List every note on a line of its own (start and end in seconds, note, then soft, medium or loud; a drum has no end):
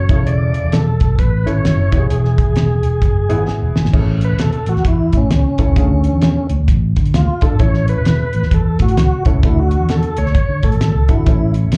0.00 0.29 C#5 loud
0.09 0.50 E1 medium
0.09 0.79 C#3 medium
0.09 0.79 E4 medium
0.09 0.14 G#4 medium
0.09 kick loud
0.09 closed hi-hat medium
0.15 0.82 A4 medium
0.26 0.74 D5 medium
0.26 closed hi-hat medium
0.54 closed hi-hat medium
0.63 0.96 E1 medium
0.72 1.16 A4 medium
0.72 snare loud
0.72 closed hi-hat medium
1.00 1.17 B1 loud
1.00 kick medium
1.00 closed hi-hat medium
1.19 1.43 A1 medium
1.19 1.48 B4 medium
1.19 kick medium
1.19 closed hi-hat medium
1.46 1.63 G#1 medium
1.46 1.93 C#4 medium
1.46 1.90 E4 medium
1.46 1.93 A4 medium
1.46 2.06 C#5 loud
1.46 closed hi-hat medium
1.64 1.89 F#1 loud
1.64 snare loud
1.64 closed hi-hat medium
1.92 2.08 E1 loud
1.92 2.61 B3 medium
1.92 2.62 E4 medium
1.92 1.97 G4 medium
1.92 kick loud
1.92 closed hi-hat medium
1.98 2.64 G#4 medium
2.10 2.35 E1 loud
2.10 3.44 G#4 medium
2.10 closed hi-hat medium
2.25 snare soft
2.38 kick medium
2.38 closed hi-hat medium
2.47 2.80 E1 medium
2.56 snare loud
2.56 closed hi-hat medium
2.83 3.00 E1 medium
2.83 closed hi-hat medium
3.02 3.27 F#1 medium
3.02 kick medium
3.02 closed hi-hat medium
3.29 3.45 G#1 medium
3.29 3.76 B3 medium
3.29 3.76 E4 medium
3.29 3.76 G#4 loud
3.29 3.38 E5 medium
3.29 closed hi-hat medium
3.38 3.47 F#5 medium
3.48 3.90 G#5 medium
3.48 snare medium
3.62 3.74 E1 medium
3.75 3.83 G1 medium
3.75 snare medium
3.84 3.92 G#1 medium
3.84 snare medium
3.93 4.32 A1 loud
3.93 4.59 C#4 medium
3.93 4.59 E4 medium
3.93 4.00 G#4 medium
3.93 kick loud
3.93 crash medium
3.99 4.62 A4 medium
4.21 4.40 B4 loud
4.21 closed hi-hat medium
4.30 4.51 E1 medium
4.39 4.69 A4 medium
4.39 snare loud
4.39 closed hi-hat medium
4.53 closed hi-hat soft
4.66 4.75 A1 loud
4.66 4.87 F#4 loud
4.66 closed hi-hat medium
4.76 4.84 E2 medium
4.76 snare soft
4.85 5.10 E2 medium
4.85 5.18 E4 medium
4.85 kick medium
4.85 closed hi-hat medium
5.13 5.29 A2 medium
5.13 kick medium
5.13 closed hi-hat medium
5.17 5.30 C#4 medium
5.30 5.43 C#2 medium
5.30 6.47 C#4 medium
5.30 snare loud
5.30 closed hi-hat loud
5.58 5.67 C2 medium
5.58 5.71 C#4 medium
5.58 5.71 E4 medium
5.58 5.71 A4 medium
5.58 kick medium
5.58 closed hi-hat medium
5.67 5.75 C#2 medium
5.76 6.09 D2 loud
5.76 6.42 D3 medium
5.76 6.42 F4 medium
5.76 5.84 G#4 medium
5.76 kick loud
5.76 closed hi-hat medium
5.82 6.45 A4 medium
6.04 closed hi-hat medium
6.13 6.33 E2 medium
6.22 snare loud
6.22 closed hi-hat loud
6.49 6.58 D2 medium
6.49 closed hi-hat medium
6.59 6.67 D2 medium
6.68 6.93 A1 medium
6.68 kick medium
6.68 closed hi-hat medium
6.96 7.12 D3 loud
6.96 kick medium
6.96 closed hi-hat medium
7.05 closed hi-hat soft
7.14 7.27 D2 medium
7.14 7.44 F4 medium
7.14 snare loud
7.14 closed hi-hat medium
7.41 7.50 G1 medium
7.41 7.54 D4 medium
7.41 7.54 F4 medium
7.41 7.61 A4 loud
7.41 7.55 A4 medium
7.41 kick medium
7.41 closed hi-hat medium
7.51 7.59 G#1 medium
7.59 7.92 A1 loud
7.59 8.25 C#4 medium
7.59 8.26 E4 medium
7.59 8.25 A4 medium
7.59 7.86 C#5 medium
7.59 kick loud
7.59 closed hi-hat medium
7.74 snare soft
7.88 8.54 B4 loud
7.88 closed hi-hat medium
7.97 8.17 E1 medium
8.05 snare loud
8.05 closed hi-hat loud
8.33 8.42 A1 medium
8.33 closed hi-hat medium
8.43 8.51 E2 medium
8.43 snare soft
8.51 8.76 E2 loud
8.51 8.79 A4 medium
8.51 kick medium
8.51 closed hi-hat medium
8.79 8.95 A2 medium
8.79 9.24 F#4 loud
8.79 kick medium
8.79 closed hi-hat medium
8.89 closed hi-hat soft
8.96 9.09 C#2 loud
8.96 snare loud
8.96 closed hi-hat loud
9.25 9.34 C2 medium
9.25 9.38 C#4 medium
9.25 9.38 E4 medium
9.25 9.38 A4 medium
9.25 kick medium
9.25 closed hi-hat medium
9.34 9.42 C#2 medium
9.43 9.76 D2 loud
9.43 10.09 D4 medium
9.43 9.58 E4 medium
9.43 10.09 F#4 medium
9.43 10.10 A4 medium
9.43 kick loud
9.43 closed hi-hat medium
9.59 9.91 F#4 medium
9.71 closed hi-hat medium
9.80 10.00 E2 medium
9.89 10.19 A4 loud
9.89 snare loud
9.89 closed hi-hat loud
10.03 closed hi-hat soft
10.17 10.25 D2 medium
10.17 10.65 C#5 loud
10.17 closed hi-hat medium
10.26 10.34 D2 medium
10.26 snare soft
10.35 kick medium
10.35 closed hi-hat medium
10.49 10.61 D3 medium
10.63 10.71 A2 medium
10.63 11.11 A4 loud
10.63 kick medium
10.63 closed hi-hat medium
10.72 10.92 A1 medium
10.72 closed hi-hat soft
10.81 snare loud
10.81 closed hi-hat loud
10.95 11.07 C#2 medium
11.08 11.24 G#1 medium
11.08 11.21 D4 medium
11.08 11.52 E4 medium
11.08 11.21 F#4 medium
11.08 11.21 A4 medium
11.08 kick medium
11.08 closed hi-hat medium
11.26 11.65 A1 medium
11.26 11.77 C#4 medium
11.26 11.77 E4 medium
11.26 11.77 A4 medium
11.26 kick loud
11.26 closed hi-hat medium
11.54 closed hi-hat medium
11.64 11.77 E1 medium
11.72 snare loud
11.72 closed hi-hat loud